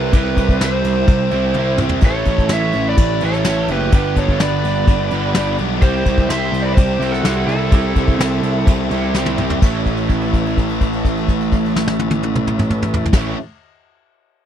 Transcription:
Already playing: C2 C3 G3 C4 E4 G4 B4 E5
0.13 C2 C3 G3 C4 E4, kick, ride
0.18 B4
0.36 C2 C4 E4, kick, ride
0.41 G3
0.49 kick
0.60 C2 C3 G3 C4 E4, snare, ride
0.65 C5
0.84 C2, ride
1.07 C2 C3 G3 C4, kick, ride
1.11 E4
1.31 C2 C3 C4 E4, ride
1.35 G3
1.54 C2 C3 G3, high tom
1.59 C4 E4
1.78 C2 E4, mid tom
1.82 G3 C4
1.89 floor tom
2.01 A1 A2 C#3 E4 A4 B4, kick, crash
2.05 E3 A3 C#4 E4 C#5
2.25 A1 E4, kick, ride
2.30 A3 C#4
2.38 kick
2.49 A1 E3 A3 C#4, snare, ride
2.53 E4 C#5 E5
2.73 A1, ride
2.89 B4 D5
2.97 A1 A2 E3 A3 C#4, kick, ride
3.02 E4
3.20 A1 E3 C#4 E4, ride
3.25 A2 A3 A4 C#5
3.33 snare
3.44 A1 A2 E3 A3 C#4, snare, ride
3.49 E4
3.68 F#1 C#4 E4 G4, ride
3.72 A3 B4
3.92 G1 G2 D3 G3 B3 D4 G4 A4 B4, kick, ride
4.16 G1 G3 B3 D4 A4 C#5, kick, ride
4.28 kick
4.40 G1 D3 G3 B3 D4 B4 D5, snare, ride
4.64 G1, ride
4.87 G1 G2 D3 G3 B3 D4, kick, ride
5.11 G1 G2 D3 B3 D4, ride
5.15 G3
5.34 G1 G2 D3 G3 B3 D4, snare, ride
5.58 B1 G3 B3 D4, ride
5.82 C2 C3 G3 C4 E4 G4 C5, kick, ride
5.86 E4
6.05 C2 C4 E4, kick, ride
6.10 G3
6.18 kick
6.29 C2 C3 G3 C4 C5 E5, snare, ride
6.33 E4
6.52 C2, ride
6.62 B4 D5
6.75 C2 C3 G3 C4 G4 C5, kick, ride
6.79 E4
6.99 C2 G3 C4 E4, ride
7.04 C3
7.11 F#4 A4, snare
7.23 C2 C3 G3 C4 E4, snare, ride
7.46 C2 G3 C4 E4 A4, ride
7.71 C2 C3 G3 C4 E4, kick, ride
7.95 C2 G3 C4 E4, kick, ride
8.08 kick
8.17 C2 C3 G3 C4, snare, ride
8.22 E4
8.42 C2, ride
8.66 C2 C3 G3 C4, kick, ride
8.71 E4
8.89 C2 G3 C4 E4, ride
8.95 C3
9.13 C2 C3 G3 C4 E4, snare
9.26 high tom
9.38 C2 G3 C4 E4, mid tom
9.50 floor tom
9.62 A1 A2 E3 C#4 E4 A4 B4, kick, crash
9.66 A3 E4
9.86 kick, crash
9.97 crash
10.09 kick, crash
10.21 crash
10.33 kick, crash
10.46 crash
10.57 kick, crash
10.69 crash
10.81 kick, crash
10.93 crash
11.05 kick, crash
11.17 crash
11.28 kick, crash
11.40 crash
11.52 kick, crash
11.65 crash
11.76 snare
11.88 snare
11.99 high tom
12.11 high tom
12.23 high tom
12.35 mid tom
12.47 mid tom
12.59 mid tom
12.70 mid tom
12.82 mid tom
12.94 floor tom
13.05 floor tom
13.13 A1 A2 E3 C#4 E4 A4 B4, kick, snare, crash
13.17 A3

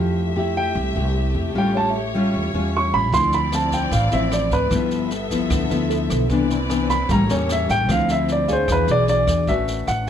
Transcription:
Already playing: F2 F3 A3 E4 G4 E5
0.36 A3 E4 G4 E5
0.57 G5
0.75 C2 C3
0.96 C2 A3 E4 G4
1.35 F2
1.55 A1 A2 G3 C#4 F4 C#5 G5
1.75 C#5 A5
1.90 E5
2.14 G3 C#4 F4
2.34 E2
2.54 E2 G3 C#4 F4
2.77 C#6
2.94 A1 B5
3.12 D2 D3 F3 C4 E4 D5 C6, kick, snare
3.32 B5, snare
3.52 F3 C4 E4 A5, cross-stick, snare
3.72 G5, kick, snare
3.91 A1 A2 F5, kick, snare
4.11 A1 F3 C4 E4 E5, snare
4.31 D5, cross-stick, snare
4.51 D2 B4, kick, snare
4.70 G1 G2 F3 B3 E4 A4 E5, kick, cross-stick, snare
4.91 snare
5.11 snare
5.30 F3 B3 E4, kick, snare
5.50 D2 D3, kick, cross-stick, snare
5.70 D2 F3 B3 E4, snare
5.90 A4, snare
6.10 B1, kick, cross-stick, snare
6.30 C2 C3 E3 B3 C4 D4 E4 B4 D5, kick, snare
6.50 snare
6.69 E3 B3 D4, cross-stick, snare
6.89 B5, kick, snare
7.09 A1 A2 G3 A#3 C#4 G4 A4 C#5 A#5, kick, snare
7.29 E2 G3 A#3 C#4 C#5, snare
7.49 E5, cross-stick, snare
7.69 A1 G5, kick, snare
7.89 D2 D3 F3 C4 E4 F5, kick, cross-stick, snare
8.09 E5, snare
8.28 D5, snare
8.48 D4 G#4 C#5 F5, kick, snare
8.53 C5
8.68 E2 E3 F#4 G#4, kick, cross-stick, snare
8.72 B4
8.88 B1 D4 G#4 D5, snare
9.08 D5, snare
9.27 E2, kick, cross-stick, snare
9.47 A1 A3 C#4 F#4 B4 E5, kick, snare
9.68 snare
9.87 A1 F#5, cross-stick, snare

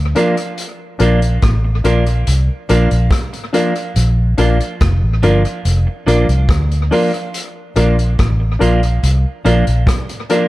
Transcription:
Already playing: D2
0.15 F3 A#3 D4 F4 A#4, closed hi-hat
0.37 muted clean electric guitar stroke, closed hi-hat
0.58 closed hi-hat
0.99 A#1 F3 A#3 D4 F4 A#4, closed hi-hat
1.22 closed hi-hat
1.42 A1, kick, cross-stick, closed hi-hat
1.65 muted clean electric guitar stroke
1.84 A#1 F3 A#3 D4 F4 A#4, closed hi-hat
2.06 closed hi-hat
2.27 C2, closed hi-hat
2.69 A#1 F3 A#3 D4 F4 A#4, closed hi-hat
2.91 A#1, closed hi-hat
3.11 kick, cross-stick, closed hi-hat
3.33 muted clean electric guitar stroke, closed hi-hat
3.53 F3 A#3 D4 F4 A#4, closed hi-hat
3.75 closed hi-hat
3.96 A#1, closed hi-hat
4.38 A#1 F3 A#3 D4 F4 A#4, closed hi-hat
4.60 closed hi-hat
4.80 F1, kick, cross-stick, closed hi-hat
5.02 A1
5.23 G1 F3 A#3 D4 F4 A#4, closed hi-hat
5.45 muted clean electric guitar stroke, closed hi-hat
5.65 F1, closed hi-hat
5.87 muted clean electric guitar stroke
6.06 A#1 F3 A#3 D4 F4 A#4, closed hi-hat
6.29 C2, closed hi-hat
6.49 kick, cross-stick, closed hi-hat
6.71 closed hi-hat
6.91 F3 A#3 D4 F4 A#4, open hi-hat
7.14 closed hi-hat
7.34 closed hi-hat
7.76 A#1 F3 A#3 D4 F4 A#4, closed hi-hat
7.99 closed hi-hat
8.19 A1, kick, cross-stick, closed hi-hat
8.40 muted clean electric guitar stroke
8.59 A#1 F3 A#3 D4 F4 A#4, closed hi-hat
8.83 closed hi-hat
9.03 C2, closed hi-hat
9.44 A#1 F3 A#3 D4 F4 A#4, closed hi-hat
9.67 A#1, closed hi-hat
9.87 kick, cross-stick, closed hi-hat
10.09 muted clean electric guitar stroke, closed hi-hat
10.29 F3 A#3 D4 F4 A#4, closed hi-hat

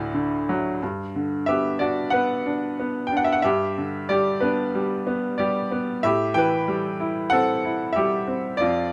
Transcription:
Already playing: D2 A2 F#4 A4 D5
0.14 D3
0.49 F#3
0.83 G2
1.15 D3
1.46 B3 G4 E5
1.79 D4 F#4 D5
2.10 B3 B4 F#5
2.46 D4
2.79 B3
3.07 G5
3.12 D4
3.17 F#5
3.24 E5
3.33 F#5
3.42 G2 G4 E5
3.78 D3
4.09 G3 G4 D5
4.40 B3 D4 B4
4.75 G3
5.07 B3
5.38 G3 G4 D5
5.71 B3
6.03 A2 G4 E5
6.34 E3 B4 G5
6.68 G3
7.00 E4
7.30 C4 A4 F#5
7.65 E4
7.93 G4 E5
7.97 G3
8.27 C4
8.57 F4 D5
8.61 F2

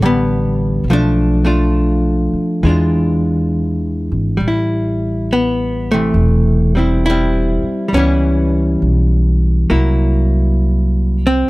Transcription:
Already playing: A1 D4 F#4
0.02 D3 G3 B3
0.84 B1
0.90 F3 A3 D4
1.45 A3 D4 F4
2.33 muted upright bass stroke
2.63 E2 E3 G#3 D4
2.69 F4
4.12 G#1
4.37 A1 G3
4.48 E4
5.33 B3
5.92 C3 E3 A3
6.14 E1
6.75 G3 C4 E4
7.06 G3 E4
7.11 C4
7.62 muted upright bass stroke
7.88 G3
7.93 C#2 E3 B3 C#4
7.97 G3 E4
8.82 B1
9.70 C2 F#3 A#3 E4
11.27 C4

